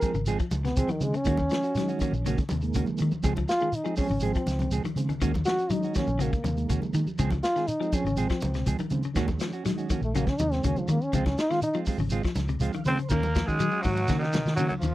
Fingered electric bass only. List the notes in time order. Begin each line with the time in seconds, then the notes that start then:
0.14 G#1
0.51 C#2
0.76 C#2
0.88 muted fingered electric bass stroke
1.00 C#3
1.27 D#2
2.13 A#1
2.51 D#2
2.75 D#2
2.88 muted fingered electric bass stroke
3.00 D#3
3.24 C#2
4.10 G#1
4.46 C#2
4.71 C#2
4.84 muted fingered electric bass stroke
4.96 C#3
5.21 D#2
6.07 A#1
6.44 D#2
6.69 D#2
6.82 muted fingered electric bass stroke
6.94 D#3
7.19 C#2
8.05 G#1
8.43 C#2
8.66 C#2
8.80 muted fingered electric bass stroke
8.91 C#3
9.16 D#2
10.01 A#1
10.40 D#2
10.64 D#2
10.77 muted fingered electric bass stroke
10.88 D#3
11.13 C#2
11.98 G#1
12.36 C#2
12.60 C#2
12.74 muted fingered electric bass stroke
12.86 C#3
13.10 D#2
13.48 D#3
13.85 G#2
14.09 D#3
14.46 D#3
14.82 D#2